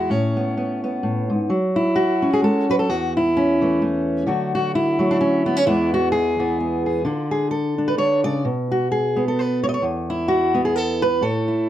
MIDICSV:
0, 0, Header, 1, 2, 480
1, 0, Start_track
1, 0, Key_signature, 3, "major"
1, 0, Tempo, 463320
1, 100, Time_signature, 3, 2, 24, 8
1, 12113, End_track
2, 0, Start_track
2, 0, Title_t, "Steel-string acoustic guitar"
2, 0, Program_c, 0, 25
2, 0, Note_on_c, 0, 66, 87
2, 102, Note_on_c, 0, 45, 64
2, 109, Note_off_c, 0, 66, 0
2, 109, Note_on_c, 0, 61, 73
2, 379, Note_on_c, 0, 59, 40
2, 582, Note_off_c, 0, 59, 0
2, 594, Note_on_c, 0, 59, 41
2, 856, Note_off_c, 0, 59, 0
2, 868, Note_on_c, 0, 59, 48
2, 1055, Note_off_c, 0, 45, 0
2, 1068, Note_on_c, 0, 45, 53
2, 1338, Note_off_c, 0, 45, 0
2, 1343, Note_on_c, 0, 44, 52
2, 1527, Note_off_c, 0, 59, 0
2, 1549, Note_off_c, 0, 44, 0
2, 1549, Note_off_c, 0, 61, 0
2, 1550, Note_on_c, 0, 54, 65
2, 1823, Note_on_c, 0, 64, 84
2, 2026, Note_on_c, 0, 66, 92
2, 2302, Note_on_c, 0, 61, 67
2, 2406, Note_off_c, 0, 64, 0
2, 2419, Note_on_c, 0, 68, 89
2, 2502, Note_off_c, 0, 54, 0
2, 2506, Note_on_c, 0, 56, 54
2, 2516, Note_off_c, 0, 68, 0
2, 2528, Note_on_c, 0, 69, 91
2, 2779, Note_off_c, 0, 56, 0
2, 2790, Note_off_c, 0, 69, 0
2, 2792, Note_on_c, 0, 54, 61
2, 2803, Note_on_c, 0, 71, 117
2, 2884, Note_off_c, 0, 66, 0
2, 2887, Note_off_c, 0, 71, 0
2, 2891, Note_on_c, 0, 69, 84
2, 2966, Note_off_c, 0, 61, 0
2, 2995, Note_off_c, 0, 54, 0
2, 2997, Note_on_c, 0, 40, 72
2, 3000, Note_off_c, 0, 69, 0
2, 3000, Note_on_c, 0, 66, 104
2, 3266, Note_off_c, 0, 66, 0
2, 3282, Note_on_c, 0, 64, 90
2, 3488, Note_on_c, 0, 61, 82
2, 3744, Note_on_c, 0, 52, 58
2, 3751, Note_on_c, 0, 57, 48
2, 3944, Note_off_c, 0, 57, 0
2, 3956, Note_on_c, 0, 57, 42
2, 3961, Note_off_c, 0, 64, 0
2, 4407, Note_off_c, 0, 52, 0
2, 4408, Note_off_c, 0, 57, 0
2, 4418, Note_on_c, 0, 50, 70
2, 4425, Note_on_c, 0, 54, 45
2, 4430, Note_on_c, 0, 57, 45
2, 4434, Note_off_c, 0, 40, 0
2, 4437, Note_on_c, 0, 66, 47
2, 4439, Note_off_c, 0, 61, 0
2, 4700, Note_off_c, 0, 66, 0
2, 4712, Note_on_c, 0, 66, 88
2, 4915, Note_off_c, 0, 66, 0
2, 4923, Note_on_c, 0, 64, 95
2, 5156, Note_off_c, 0, 54, 0
2, 5168, Note_off_c, 0, 57, 0
2, 5169, Note_on_c, 0, 54, 66
2, 5181, Note_on_c, 0, 57, 45
2, 5292, Note_on_c, 0, 62, 90
2, 5390, Note_off_c, 0, 62, 0
2, 5394, Note_on_c, 0, 61, 93
2, 5653, Note_off_c, 0, 61, 0
2, 5657, Note_on_c, 0, 59, 83
2, 5765, Note_off_c, 0, 59, 0
2, 5765, Note_on_c, 0, 61, 76
2, 5772, Note_off_c, 0, 64, 0
2, 5839, Note_off_c, 0, 50, 0
2, 5839, Note_off_c, 0, 54, 0
2, 5845, Note_off_c, 0, 57, 0
2, 5863, Note_on_c, 0, 40, 71
2, 5870, Note_off_c, 0, 61, 0
2, 5871, Note_on_c, 0, 52, 53
2, 5871, Note_on_c, 0, 64, 112
2, 5878, Note_on_c, 0, 56, 51
2, 5884, Note_on_c, 0, 59, 45
2, 6141, Note_off_c, 0, 64, 0
2, 6151, Note_on_c, 0, 66, 101
2, 6335, Note_off_c, 0, 66, 0
2, 6339, Note_on_c, 0, 68, 95
2, 6609, Note_off_c, 0, 52, 0
2, 6615, Note_off_c, 0, 59, 0
2, 6621, Note_on_c, 0, 52, 58
2, 6627, Note_on_c, 0, 59, 52
2, 6829, Note_off_c, 0, 59, 0
2, 6842, Note_on_c, 0, 59, 43
2, 7095, Note_off_c, 0, 68, 0
2, 7107, Note_on_c, 0, 68, 46
2, 7284, Note_off_c, 0, 52, 0
2, 7288, Note_off_c, 0, 56, 0
2, 7288, Note_off_c, 0, 68, 0
2, 7300, Note_on_c, 0, 50, 70
2, 7306, Note_off_c, 0, 40, 0
2, 7307, Note_on_c, 0, 62, 45
2, 7312, Note_off_c, 0, 59, 0
2, 7316, Note_on_c, 0, 65, 46
2, 7571, Note_off_c, 0, 65, 0
2, 7575, Note_on_c, 0, 68, 77
2, 7775, Note_off_c, 0, 68, 0
2, 7779, Note_on_c, 0, 69, 86
2, 8050, Note_off_c, 0, 62, 0
2, 8063, Note_on_c, 0, 62, 62
2, 8161, Note_on_c, 0, 71, 86
2, 8253, Note_off_c, 0, 50, 0
2, 8266, Note_off_c, 0, 71, 0
2, 8266, Note_on_c, 0, 50, 54
2, 8270, Note_on_c, 0, 73, 102
2, 8533, Note_off_c, 0, 73, 0
2, 8538, Note_off_c, 0, 50, 0
2, 8538, Note_on_c, 0, 74, 110
2, 8543, Note_on_c, 0, 49, 60
2, 8639, Note_off_c, 0, 69, 0
2, 8724, Note_off_c, 0, 62, 0
2, 8747, Note_off_c, 0, 74, 0
2, 8750, Note_off_c, 0, 49, 0
2, 8751, Note_on_c, 0, 47, 64
2, 9029, Note_on_c, 0, 66, 75
2, 9232, Note_off_c, 0, 66, 0
2, 9236, Note_on_c, 0, 68, 88
2, 9494, Note_on_c, 0, 59, 66
2, 9607, Note_off_c, 0, 68, 0
2, 9615, Note_on_c, 0, 69, 84
2, 9727, Note_on_c, 0, 71, 97
2, 9978, Note_off_c, 0, 71, 0
2, 9982, Note_on_c, 0, 73, 109
2, 10032, Note_off_c, 0, 73, 0
2, 10036, Note_on_c, 0, 75, 97
2, 10085, Note_off_c, 0, 75, 0
2, 10089, Note_on_c, 0, 73, 92
2, 10159, Note_off_c, 0, 59, 0
2, 10163, Note_off_c, 0, 47, 0
2, 10175, Note_on_c, 0, 40, 62
2, 10190, Note_off_c, 0, 73, 0
2, 10192, Note_off_c, 0, 69, 0
2, 10462, Note_on_c, 0, 64, 84
2, 10653, Note_on_c, 0, 66, 98
2, 10919, Note_off_c, 0, 64, 0
2, 10923, Note_on_c, 0, 59, 67
2, 10932, Note_on_c, 0, 64, 48
2, 11028, Note_off_c, 0, 66, 0
2, 11032, Note_on_c, 0, 68, 89
2, 11143, Note_off_c, 0, 68, 0
2, 11143, Note_on_c, 0, 69, 110
2, 11414, Note_off_c, 0, 69, 0
2, 11419, Note_on_c, 0, 71, 103
2, 11592, Note_off_c, 0, 59, 0
2, 11616, Note_on_c, 0, 45, 76
2, 11618, Note_off_c, 0, 40, 0
2, 11626, Note_off_c, 0, 71, 0
2, 11629, Note_on_c, 0, 69, 107
2, 11892, Note_off_c, 0, 64, 0
2, 11892, Note_on_c, 0, 64, 50
2, 12113, Note_off_c, 0, 45, 0
2, 12113, Note_off_c, 0, 64, 0
2, 12113, Note_off_c, 0, 69, 0
2, 12113, End_track
0, 0, End_of_file